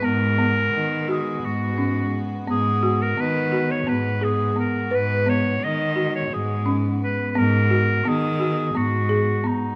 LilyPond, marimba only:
\new Staff \with { instrumentName = "Marimba" } { \time 7/8 \key gis \minor \tempo 4 = 86 b8 b4 fis'4 cis'4 | b8 fis'8 b8 fis'8 b8 gis'8 b8 | b'8 b4 fis'4 cis'4 | b8 fis'8 b8 fis'8 b8 gis'8 b8 | }